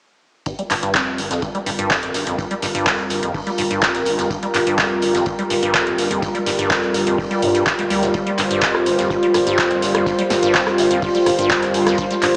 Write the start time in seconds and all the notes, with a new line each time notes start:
0.46 G2 G3 F4 A#4, kick, closed hi-hat
0.59 G3, closed hi-hat
0.70 G1 G2 A#4, clap, closed hi-hat, open hi-hat
0.83 G2, closed hi-hat
0.94 F2, kick, snare, clap, closed hi-hat
1.15 G1 G2 G5, open hi-hat
1.19 closed hi-hat
1.31 F2, snare, closed hi-hat
1.42 G2, kick, closed hi-hat
1.55 G3, closed hi-hat
1.66 G1 G2, closed hi-hat, open hi-hat
1.79 G2, closed hi-hat
1.90 F2, kick, snare, clap, closed hi-hat
2.03 G1, closed hi-hat
2.14 G1 G2, snare, closed hi-hat, open hi-hat
2.27 F2, closed hi-hat
2.38 G2, kick, closed hi-hat
2.51 G3, closed hi-hat
2.62 G1 G2, snare, closed hi-hat, open hi-hat
2.75 G2, closed hi-hat
2.86 F2, kick, snare, clap, closed hi-hat
2.98 closed hi-hat
3.10 G1 G2, snare, closed hi-hat, open hi-hat
3.23 F2, closed hi-hat
3.34 G2, kick, open hi-hat
3.47 G3, closed hi-hat
3.58 G1 G2, closed hi-hat, open hi-hat
3.71 G2, closed hi-hat
3.82 F2, kick, snare, clap, closed hi-hat
3.95 G1, snare, closed hi-hat
4.05 G1 G2, closed hi-hat, open hi-hat
4.18 F2, snare, closed hi-hat
4.30 G2, kick, closed hi-hat
4.43 G3, closed hi-hat
4.54 G1 G2, clap, closed hi-hat, open hi-hat
4.67 G2, closed hi-hat
4.78 F2, kick, snare, clap, closed hi-hat
5.02 G1 G2, closed hi-hat, open hi-hat
5.15 F2, snare, closed hi-hat
5.26 G2, kick, closed hi-hat
5.39 G3, closed hi-hat
5.50 G1 G2, closed hi-hat, open hi-hat
5.63 G2, closed hi-hat
5.74 F2, kick, snare, clap, closed hi-hat
5.87 G1, closed hi-hat
5.98 G1 G2, snare, closed hi-hat, open hi-hat
6.11 F2, closed hi-hat
6.22 G2, kick, closed hi-hat
6.35 G3, closed hi-hat
6.46 G1 G2, snare, closed hi-hat, open hi-hat
6.59 G2, closed hi-hat
6.70 F2, kick, snare, clap, closed hi-hat
6.83 closed hi-hat
6.94 G1 G2, snare, closed hi-hat, open hi-hat
7.07 F2, closed hi-hat
7.18 G2, kick, open hi-hat
7.31 G3, closed hi-hat
7.42 G2, closed hi-hat, open hi-hat
7.55 G2, closed hi-hat
7.66 G2, kick, snare, clap, closed hi-hat
7.79 G1 G3, closed hi-hat
7.90 D2 G3, closed hi-hat, open hi-hat
8.02 F2, snare, closed hi-hat
8.14 G2 C5, kick, closed hi-hat
8.27 G3, closed hi-hat
8.38 G1 G2, clap, closed hi-hat, open hi-hat
8.51 G2, closed hi-hat
8.61 F2, kick, snare, clap, closed hi-hat
8.75 cross-stick
8.86 G1 G2, closed hi-hat, open hi-hat
8.99 F2, snare, closed hi-hat
9.10 G2, kick, closed hi-hat
9.23 G3, closed hi-hat
9.34 G1 G2, cross-stick, closed hi-hat, open hi-hat
9.47 G2, closed hi-hat
9.58 F2, kick, snare, clap, closed hi-hat
9.71 G1, closed hi-hat
9.82 G1 G2, snare, closed hi-hat, open hi-hat
9.95 F2, cross-stick, closed hi-hat
10.01 F5
10.06 G2, kick, closed hi-hat
10.19 G3, closed hi-hat
10.30 G1 G2, snare, closed hi-hat, open hi-hat
10.43 G2, closed hi-hat
10.54 F2, kick, snare, clap, closed hi-hat
10.67 cross-stick, closed hi-hat
10.78 G1 G2, snare, closed hi-hat, open hi-hat
10.91 F2, closed hi-hat
11.02 G2, kick, open hi-hat
11.15 G3, closed hi-hat
11.26 G1 G2, cross-stick, closed hi-hat, open hi-hat
11.38 G2, closed hi-hat
11.50 F2, kick, snare, clap, closed hi-hat
11.63 G1, snare, closed hi-hat
11.74 G1 G2, closed hi-hat, open hi-hat
11.87 F2, cross-stick, snare, closed hi-hat
11.98 G2, kick, closed hi-hat
12.11 G3, closed hi-hat
12.22 G1 G2, clap, closed hi-hat, open hi-hat